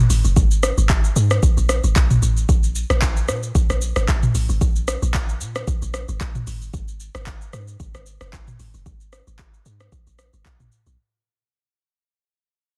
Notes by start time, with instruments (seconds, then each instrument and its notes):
0.10 log drum bass G#1, open hi-hat, shaker
0.24 log drum bass F#1, shaker
0.36 log drum bass G#1, kick, shaker
0.51 shaker
0.63 cross-stick, shaker
0.78 log drum bass G#1, shaker
0.89 kick, clap, shaker
1.04 shaker
1.16 log drum bass G#2, shaker
1.31 cross-stick, shaker
1.43 log drum bass A#1, kick, shaker
1.57 log drum bass A#1, shaker
1.69 cross-stick, shaker
1.84 log drum bass G#1, shaker
1.96 log drum bass B1, kick, clap, shaker
2.10 mid tom, shaker
2.22 log drum bass A1, shaker
2.37 shaker
2.49 log drum bass A#1, kick, shaker
2.63 shaker
2.75 shaker
2.90 log drum bass A#1, cross-stick, shaker
3.02 kick, clap, shaker
3.17 shaker
3.28 log drum bass A#2, cross-stick, shaker
3.43 shaker
3.55 log drum bass A#1, kick, shaker
3.70 log drum bass A#1, cross-stick, shaker
3.82 shaker
3.96 log drum bass G#1, cross-stick, shaker
4.08 log drum bass A#1, kick, clap, shaker
4.23 mid tom, shaker
4.35 log drum bass A#1, open hi-hat, shaker
4.49 log drum bass G#1, shaker
4.61 log drum bass A#1, kick, shaker
4.76 shaker
4.88 cross-stick, shaker
5.02 log drum bass A#1, shaker
5.14 kick, clap, shaker
5.29 shaker
5.41 log drum bass A#2, shaker
5.55 cross-stick, shaker
5.67 log drum bass A#1, kick, shaker
5.82 log drum bass A#1, shaker
5.94 cross-stick, shaker
6.08 log drum bass G#1, shaker
6.21 log drum bass A#1, kick, clap, shaker
6.35 mid tom, shaker
6.47 log drum bass G#1, open hi-hat, shaker
6.62 shaker
6.74 log drum bass G#1, kick, shaker
6.88 shaker
7.00 shaker
7.15 log drum bass G#1, cross-stick, shaker
7.26 kick, clap, shaker
7.41 shaker
7.53 log drum bass G#2, cross-stick, shaker
7.68 shaker
7.80 log drum bass G#1, kick, shaker
7.94 log drum bass G#1, cross-stick, shaker
8.06 shaker
8.21 log drum bass F#1, cross-stick, shaker
8.33 log drum bass G#1, kick, clap, shaker
8.47 mid tom, shaker
8.59 log drum bass G#1, open hi-hat, shaker
8.74 log drum bass F#1, shaker
8.86 log drum bass G#1, kick, shaker
9.01 shaker
9.13 cross-stick, shaker
9.27 log drum bass G#1, shaker
9.39 kick, clap, shaker
9.54 shaker
9.66 log drum bass G#2, shaker
9.80 cross-stick, shaker
9.92 log drum bass A#1, kick, shaker
10.07 log drum bass A#1, shaker
10.19 cross-stick, shaker
10.33 log drum bass G#1, shaker
10.45 log drum bass B1, kick, clap, shaker
10.60 log drum bass A#1, mid tom, shaker
10.72 shaker
10.86 log drum bass B1, shaker